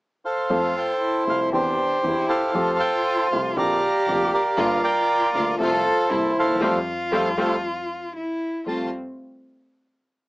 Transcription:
0.25 1.24 A4 medium
0.25 0.76 C5 soft
0.25 0.78 F5 medium
0.50 0.72 F2 medium
0.50 0.72 F3 medium
0.50 0.72 A3 medium
0.50 0.72 C4 medium
0.50 0.98 F4 medium
0.50 0.72 A4 medium
0.77 1.50 C5 medium
0.77 1.24 G5 medium
1.01 1.54 E4 medium
1.27 1.49 C2 soft
1.27 1.49 C3 soft
1.27 1.49 F3 soft
1.27 1.49 A3 soft
1.27 1.49 C4 soft
1.27 1.49 A4 soft
1.27 1.41 F5 medium
1.52 1.74 E2 medium
1.52 1.75 E2 medium
1.52 1.74 E3 medium
1.52 1.74 C4 soft
1.52 2.03 D4 medium
1.52 1.75 D4 soft
1.52 1.75 G4 medium
1.52 2.51 G4 medium
1.52 2.26 C5 medium
2.03 2.25 E2 medium
2.03 2.26 E2 medium
2.03 2.25 E3 soft
2.03 2.25 C4 soft
2.03 2.25 D4 soft
2.03 2.45 E4 medium
2.03 2.26 G4 soft
2.28 3.27 A4 medium
2.28 2.77 C5 medium
2.28 2.82 F5 medium
2.47 2.56 E4 medium
2.54 2.76 F2 medium
2.54 2.76 F3 medium
2.54 2.76 A3 medium
2.54 2.76 C4 medium
2.54 3.58 F4 medium
2.54 2.76 G4 medium
2.79 3.52 C5 medium
2.79 3.27 G5 medium
3.31 3.53 C2 soft
3.31 3.53 C3 soft
3.31 3.53 F3 soft
3.31 3.53 A3 soft
3.31 3.53 C4 soft
3.31 3.53 G4 soft
3.31 3.43 F5 medium
3.56 3.78 A#1 medium
3.56 3.78 A#2 medium
3.56 3.78 D3 medium
3.56 3.78 A#3 medium
3.56 3.78 C4 medium
3.56 3.78 F4 medium
3.56 4.59 G4 medium
3.56 4.32 D5 medium
3.56 4.33 F5 medium
3.56 4.30 A#5 medium
4.08 4.29 F1 medium
4.08 4.29 F1 soft
4.08 4.29 F2 medium
4.08 4.29 D3 soft
4.08 4.29 A#3 soft
4.08 4.29 C4 soft
4.08 4.29 F4 soft
4.33 4.82 A#4 medium
4.33 4.81 D5 medium
4.33 4.81 F5 medium
4.57 4.79 G1 medium
4.57 4.79 G2 medium
4.57 4.79 D3 medium
4.57 4.79 G3 medium
4.57 4.79 A#3 medium
4.57 5.59 F4 medium
4.57 4.79 F4 medium
4.83 5.55 A#4 medium
4.83 5.55 D5 medium
4.83 5.31 G5 medium
5.34 5.55 D2 medium
5.34 5.56 D2 soft
5.34 5.56 D3 soft
5.34 5.55 G3 soft
5.34 5.56 G3 soft
5.34 5.56 A#3 soft
5.34 5.56 F4 medium
5.34 5.56 F4 soft
5.34 5.47 F5 medium
5.58 5.81 C2 medium
5.58 5.81 C3 medium
5.58 5.81 F3 medium
5.58 5.81 A3 medium
5.58 5.81 C4 medium
5.58 5.81 F4 medium
5.58 6.08 F4 medium
5.58 6.11 A4 loud
5.58 6.32 A4 medium
5.62 6.37 C5 medium
6.10 6.32 C2 medium
6.10 6.32 C3 medium
6.10 6.32 G3 soft
6.10 6.31 A#3 medium
6.10 6.32 A#3 soft
6.10 6.32 C4 soft
6.10 6.62 E4 medium
6.10 6.32 E4 medium
6.36 6.61 D#2 medium
6.36 6.61 A4 medium
6.36 6.61 C5 medium
6.36 6.61 F5 medium
6.43 6.48 D2 soft
6.48 6.55 D#2 medium
6.55 6.61 E2 medium
6.61 6.80 F2 medium
6.61 6.77 F3 medium
6.61 6.77 G3 medium
6.61 6.77 A3 medium
6.61 6.77 C4 medium
6.61 8.14 F4 medium
6.61 6.79 A4 medium
6.61 6.79 C5 medium
6.61 6.79 F5 medium
7.12 7.31 F2 medium
7.12 7.28 F3 medium
7.12 7.28 G3 medium
7.12 7.29 G3 medium
7.12 7.28 A3 medium
7.12 7.28 C4 medium
7.12 7.29 A4 medium
7.12 7.29 C5 medium
7.12 7.29 F5 medium
7.37 7.56 F2 medium
7.37 7.54 F3 medium
7.37 7.54 G3 medium
7.37 7.54 A3 medium
7.37 7.54 C4 medium
7.37 7.56 A4 medium
7.37 7.56 C5 medium
7.37 7.56 F5 medium
8.16 8.63 E4 medium
8.66 8.88 F2 soft
8.66 8.87 G3 medium
8.66 8.88 G3 soft
8.66 8.87 A3 soft
8.66 8.88 A3 soft
8.66 8.91 C4 medium
8.66 8.87 F4 medium
8.66 8.91 A5 medium

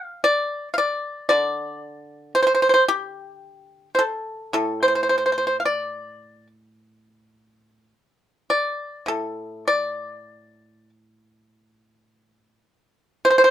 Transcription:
0.00 0.04 G5 medium
0.04 0.22 F5 medium
0.24 0.68 D5 medium
0.74 0.78 F5 medium
0.78 1.27 D5 medium
1.29 4.54 D3 medium
1.29 2.32 D5 medium
2.35 2.41 C5 medium
2.43 2.46 C5 medium
2.47 2.53 C5 medium
2.55 2.61 C5 medium
2.62 2.68 C5 medium
2.69 2.73 C5 medium
2.74 2.83 C5 medium
2.88 3.89 G4 medium
3.95 4.52 A4 medium
3.95 4.01 C5 soft
4.53 7.92 A2 medium
4.53 4.81 A4 medium
4.83 4.87 C5 medium
4.88 4.94 C5 soft
4.95 5.02 C5 soft
5.03 5.08 C5 soft
5.09 5.17 C5 soft
5.26 5.31 C5 soft
5.32 5.37 C5 soft
5.38 5.46 C5 soft
5.47 5.56 C5 soft
5.60 5.65 F5 soft
5.65 6.47 D5 medium
8.50 9.05 D5 medium
9.06 12.63 A2 soft
9.06 9.64 A4 medium
9.68 10.89 D5 medium
13.25 13.29 C5 medium
13.30 13.36 C5 medium
13.38 13.43 C5 medium
13.44 13.50 C5 medium

